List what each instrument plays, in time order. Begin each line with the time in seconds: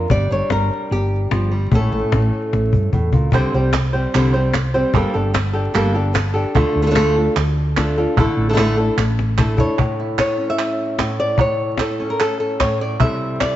Already playing: nylon-string guitar A#4
0.10 fretless electric bass G1, nylon-string guitar G3 D4 G4 D5, cajon bass
0.31 fretless electric bass G1, nylon-string guitar D4 C#5
0.50 fretless electric bass G1, nylon-string guitar A#4, cajon slap
0.91 fretless electric bass G1, nylon-string guitar G4
1.11 cajon slap
1.31 fretless electric bass G1, nylon-string guitar F3, cajon slap
1.52 nylon-string guitar G3
1.71 fretless electric bass A1, nylon-string guitar A2 A3 C#4 E4 A4, cajon bass
1.91 fretless electric bass A1, nylon-string guitar A3
2.12 fretless electric bass A1, cajon slap
2.33 cajon slap
2.53 fretless electric bass A1, cajon slap
2.72 fretless electric bass G2, cajon bass
2.93 fretless electric bass E2, nylon-string guitar A2, cajon bass
3.13 fretless electric bass C#2, nylon-string guitar A#2, cajon bass
3.32 fretless electric bass C2, nylon-string guitar C3 D3 G3 C4 G4 C5, cajon bass
3.53 fretless electric bass C2, nylon-string guitar G3 C4 G4 C5
3.73 muted nylon-string guitar stroke, cajon slap, clap
3.93 nylon-string guitar G3 C4 G4 C5
4.14 fretless electric bass C2, nylon-string guitar C3 D3 G3 C4 G4 C5, clap
4.33 nylon-string guitar G3 C4 G4 C5
4.53 muted nylon-string guitar stroke, cajon slap, clap
4.74 nylon-string guitar G3 C4 G4 C5
4.94 fretless electric bass G1, nylon-string guitar G3 A#3 D4 G4 A4, cajon bass, clap
5.14 fretless electric bass G1, nylon-string guitar D4 G4 A4
5.34 muted nylon-string guitar stroke, cajon slap, clap
5.53 nylon-string guitar D4 G4 A4
5.74 fretless electric bass G1, nylon-string guitar G3 A#3 D4 G4 A4, clap
5.94 nylon-string guitar D4 G4 A4
6.14 muted nylon-string guitar stroke, cajon slap, clap
6.34 nylon-string guitar D4 G4 A4
6.55 fretless electric bass D2, nylon-string guitar D3 A3 D4 F4 A4, cajon bass, clap
6.75 fretless electric bass D2, cajon slap
6.82 nylon-string guitar A3 D4 F4 A4
6.86 nylon-string guitar A3 D4 F4 A4
6.91 nylon-string guitar A3 D4 F4 A4
6.95 nylon-string guitar D3 A3 D4 F4 A4, cajon slap, clap
7.16 nylon-string guitar D4 F4 A4
7.36 fretless electric bass D2, muted nylon-string guitar stroke, clap
7.57 cajon slap
7.77 nylon-string guitar A3 D4 F4 A4, cajon bass, cajon slap, clap
7.97 nylon-string guitar D4 F4 A4
8.16 fretless electric bass A1, nylon-string guitar D3 A3 D4 E4 A4, cajon bass, clap
8.37 fretless electric bass A1
8.49 nylon-string guitar A3 D4 E4 A4
8.54 nylon-string guitar D4 E4 A4, cajon slap
8.58 nylon-string guitar D3 A3 D4 E4 A4, clap
8.77 nylon-string guitar D4 E4 A4, cajon slap
8.97 fretless electric bass A1, muted nylon-string guitar stroke, cajon slap, clap
9.19 cajon slap
9.37 nylon-string guitar A3 D4 E4 A4, cajon bass, clap
9.57 nylon-string guitar D4 E4 A4 C#5, cajon bass
9.78 nylon-string guitar A2, cajon bass, clap
10.00 nylon-string guitar E4
10.18 nylon-string guitar C#5, cajon slap, clap
10.38 nylon-string guitar C#4
10.50 nylon-string guitar E5
10.59 clap
10.99 nylon-string guitar A2, cajon slap, clap
11.20 nylon-string guitar D5
11.38 nylon-string guitar A2 C#5, cajon bass, clap
11.77 nylon-string guitar A4, cajon slap, clap
12.00 nylon-string guitar C#4, cajon slap
12.10 nylon-string guitar A#4
12.20 nylon-string guitar A4, clap
12.40 nylon-string guitar A4
12.60 nylon-string guitar A2 C#5, cajon bass, cajon slap, clap
12.81 nylon-string guitar D5
13.00 nylon-string guitar C3 G3 E4 A4 E5, cajon bass, clap
13.40 nylon-string guitar D5, cajon slap, clap